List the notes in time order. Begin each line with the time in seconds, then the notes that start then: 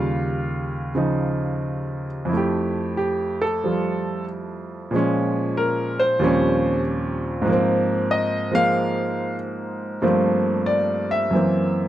Already playing: D#2 C#3 G3 F4 F5
0.95 C#3 F3 D#4
2.25 F2 E4
2.33 A3 G4
2.97 G4
3.42 A4
3.64 F3 G3 F4
4.91 A#2 F3 G#3
4.96 C#4
5.57 A#4
6.00 C5
6.19 D#2 A#2 F3 G3
6.23 C4 C#4
7.42 G#2 F3
7.49 A#3 C4
8.11 D#5
8.52 F3 G#3 A#3 F5
10.02 G2 F3 A3 A#3 C4
10.66 D5
11.11 E5
11.31 F#2 E3 A#3
11.36 C4